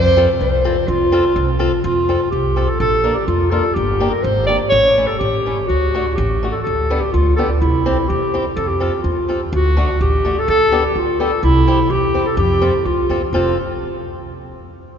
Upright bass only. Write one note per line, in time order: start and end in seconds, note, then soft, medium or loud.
0.00 0.25 F2 loud
0.41 0.72 C2 medium
0.88 1.19 F2 loud
1.36 1.67 C2 loud
1.84 2.15 F2 loud
2.32 2.63 C2 medium
2.80 3.11 A#1 loud
3.28 3.59 F2 loud
3.76 4.07 G1 loud
4.24 4.55 G#1 loud
4.72 5.04 A1 loud
5.21 5.52 A1 loud
5.69 6.01 D2 medium
6.18 6.49 A1 loud
6.67 6.98 D2 medium
7.14 7.45 D2 loud
7.62 7.92 C2 medium
8.10 8.40 E2 medium
8.57 8.88 F2 loud
9.04 9.36 E2 medium
9.53 9.84 D2 loud
10.01 10.32 A1 medium
10.48 10.79 D2 loud
10.96 11.26 D2 medium
11.43 11.74 C2 loud
11.90 12.21 E2 medium
12.37 12.68 F2 loud
12.85 13.08 D2 medium
13.09 13.31 E2 medium
13.33 13.56 F1 medium